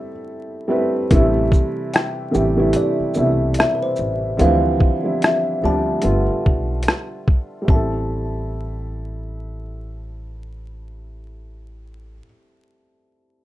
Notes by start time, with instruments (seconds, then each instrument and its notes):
Already playing: felt piano G3 A3 C4 E4 A4, kalimba E5
0.68 felt piano G3 A3 C4 E4 B4
1.11 upright bass A1, felt piano C3 E3 G3 A3 E4, kick, closed hi-hat
1.52 kick, shaker
1.94 kalimba G5, cross-stick, closed hi-hat
2.31 upright bass A1, felt piano C3 E3 G3 A3 G4, shaker
2.56 felt piano C3 E3 G3 A3 E4
2.73 kalimba D5, closed hi-hat
3.00 muted upright bass stroke
3.14 upright bass C2, felt piano B2 E3 G3 A3, shaker
3.18 felt piano C3 E4
3.54 closed hi-hat
3.59 kalimba E5, cross-stick
3.75 kalimba B4
3.83 kalimba C5
3.96 upright bass A1, shaker
4.37 upright bass D2, felt piano D3 E3 F3 G3 C4, closed hi-hat
4.42 kalimba F5
4.80 kick
5.02 felt piano D3 F3 G3 C4 E4
5.22 kalimba E5, cross-stick, closed hi-hat
5.62 upright bass D2, felt piano D3 F3 G3 C4 D4, kalimba A5
6.01 upright bass G1, felt piano D3 G3 A3 B3 F4, closed hi-hat
6.29 muted upright bass stroke
6.46 upright bass B1, kick
6.83 closed hi-hat
6.88 cross-stick
7.28 kick
7.62 felt piano G3 A3
7.68 upright bass A1, felt piano C4 E4, kalimba A5, kick
7.75 felt piano A4